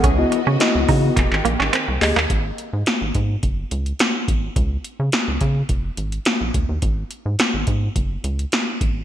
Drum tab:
HH |x-x-x-o-x-x-x-o-|x-x-x-x-x-xxx-x-|x-x-x-x-x-xxx-x-|x-x-x-x-x-xxx-x-|
CP |--------xx-xx-xx|----------------|----------------|----------------|
SD |----o-----------|----o-------o---|----o-------o---|----o-------o---|
BD |o-----o-o-------|o-----o-o-----o-|o-----o-o-----o-|o-----o-o-----o-|